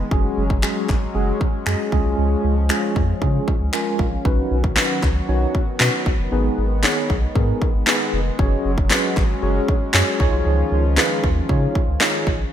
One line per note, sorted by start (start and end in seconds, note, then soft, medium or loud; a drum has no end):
0.00 4.21 G#3 medium
0.11 0.29 F#1 loud
0.11 1.91 F#3 medium
0.11 0.42 G#3 medium
0.11 0.42 C#4 medium
0.11 6.28 C#4 medium
0.11 0.43 F#4 medium
0.11 0.43 G#4 loud
0.11 kick loud
0.37 0.64 F#1 loud
0.50 kick medium
0.63 0.94 G#3 medium
0.63 0.94 C#4 medium
0.63 0.94 F#4 medium
0.63 0.94 G#4 medium
0.63 finger snap loud
0.63 clap medium
0.89 1.07 G#1 medium
0.89 kick medium
0.89 clap medium
1.15 1.32 F#1 loud
1.15 1.46 G#3 medium
1.15 1.46 C#4 medium
1.15 1.46 F#4 medium
1.15 1.46 G#4 loud
1.41 kick medium
1.66 1.75 F#2 loud
1.66 1.91 G#3 medium
1.66 1.91 C#4 medium
1.66 1.92 F#4 medium
1.66 1.92 G#4 medium
1.66 finger snap loud
1.66 clap medium
1.92 2.01 C#2 medium
1.92 4.23 F3 medium
1.92 2.54 G#3 medium
1.92 2.54 C#4 medium
1.92 2.55 F4 medium
1.92 2.55 G#4 loud
1.92 kick medium
2.05 2.14 B1 medium
2.18 2.36 C#2 loud
2.44 2.71 C#2 medium
2.70 3.01 G#3 medium
2.70 3.01 C#4 medium
2.70 3.01 F4 medium
2.70 3.01 G#4 loud
2.70 finger snap loud
2.70 clap medium
2.96 3.14 F2 medium
2.96 kick medium
3.21 3.39 C#3 loud
3.21 3.53 G#3 medium
3.21 3.53 C#4 medium
3.21 3.53 F4 medium
3.21 3.53 G#4 loud
3.21 kick medium
3.48 kick medium
3.61 3.69 C#2 medium
3.73 4.05 G#3 loud
3.73 4.05 C#4 medium
3.73 4.05 F4 medium
3.73 4.05 A#4 loud
3.73 3.98 G#5 medium
3.73 finger snap loud
3.73 clap medium
3.99 4.17 A#1 medium
3.99 4.23 F5 medium
3.99 kick medium
4.25 4.43 B1 loud
4.25 8.35 D#3 medium
4.25 6.30 F#3 medium
4.25 8.35 B3 medium
4.25 4.56 C#4 medium
4.25 4.56 D#4 medium
4.25 6.30 F#4 medium
4.25 4.56 F#4 medium
4.25 4.57 B4 loud
4.25 kick loud
4.51 4.78 B1 loud
4.64 kick medium
4.76 5.08 C#4 medium
4.76 5.08 D#4 medium
4.76 5.08 F#4 medium
4.76 5.08 B4 loud
4.76 snare medium
4.76 clap medium
4.76 clap loud
5.03 5.21 C#2 medium
5.03 kick medium
5.03 clap medium
5.28 5.46 B1 medium
5.28 5.60 C#4 medium
5.28 5.60 D#4 medium
5.28 5.60 F#4 medium
5.28 5.60 C#5 medium
5.55 kick medium
5.80 5.89 B2 loud
5.80 6.11 C#4 medium
5.80 6.12 D#4 medium
5.80 6.12 F#4 medium
5.80 6.12 B4 medium
5.80 snare medium
5.80 clap medium
5.80 clap loud
6.06 6.15 B1 medium
6.06 kick loud
6.19 6.28 F#1 medium
6.32 6.50 G#1 loud
6.32 12.49 G#3 medium
6.32 6.63 B3 medium
6.32 6.63 D#4 medium
6.32 6.63 G#4 medium
6.32 6.63 B4 loud
6.58 6.84 G#1 medium
6.83 7.15 B3 medium
6.83 7.15 D#4 medium
6.83 7.15 G#4 medium
6.83 7.15 C#5 loud
6.83 snare medium
6.83 clap medium
6.83 clap loud
7.10 7.27 B1 medium
7.10 kick medium
7.35 7.53 G#2 loud
7.35 7.67 B3 medium
7.35 7.67 D#4 medium
7.35 7.67 G#4 medium
7.35 7.67 A#4 loud
7.35 kick medium
7.62 kick medium
7.74 7.83 G#1 medium
7.87 8.18 B3 loud
7.87 8.18 D#4 medium
7.87 8.18 G#4 medium
7.87 8.19 B4 loud
7.87 snare medium
7.87 clap medium
7.87 clap loud
8.13 8.31 F1 medium
8.39 8.57 F#1 loud
8.39 10.18 F#3 medium
8.39 8.70 C#4 loud
8.39 10.18 C#4 medium
8.39 8.70 F#4 medium
8.39 8.70 G#4 medium
8.39 8.70 C#5 loud
8.39 kick loud
8.65 8.91 F#1 loud
8.78 kick medium
8.90 9.22 C#4 medium
8.90 9.22 F#4 medium
8.90 9.22 G#4 medium
8.90 9.22 B4 loud
8.90 snare medium
8.90 clap medium
8.90 clap loud
9.17 9.34 G#1 medium
9.17 kick medium
9.17 clap medium
9.42 9.60 F#1 medium
9.42 9.74 C#4 medium
9.42 9.74 F#4 medium
9.42 9.74 G#4 medium
9.42 9.74 C#5 medium
9.68 kick medium
9.93 10.03 F#2 loud
9.93 10.20 C#4 medium
9.93 10.20 F#4 medium
9.93 10.19 G#4 medium
9.93 10.19 C#5 loud
9.93 snare medium
9.93 clap medium
9.93 clap loud
10.20 10.29 C#2 medium
10.20 12.50 D#3 medium
10.20 12.50 F3 medium
10.20 12.50 C#4 medium
10.20 10.82 D#4 medium
10.20 10.82 F4 medium
10.20 12.50 F4 medium
10.20 10.82 G#4 medium
10.20 10.82 C#5 loud
10.20 kick medium
10.33 10.42 B1 medium
10.46 10.64 C#2 loud
10.72 10.98 C#2 medium
10.97 11.29 D#4 medium
10.97 11.29 F4 medium
10.97 11.29 G#4 medium
10.97 11.29 B4 loud
10.97 snare medium
10.97 clap medium
10.97 clap loud
11.24 11.41 D#2 medium
11.24 kick medium
11.49 11.67 C#3 loud
11.49 11.80 D#4 medium
11.49 11.80 F4 medium
11.49 11.81 G#4 medium
11.49 11.81 C#5 loud
11.49 kick medium
11.75 kick medium
11.88 11.97 C#2 medium
12.00 12.32 D#4 loud
12.00 12.32 F4 medium
12.00 12.32 G#4 medium
12.00 12.32 C#5 loud
12.00 snare medium
12.00 clap medium
12.00 clap loud
12.27 12.44 A#1 medium
12.27 kick medium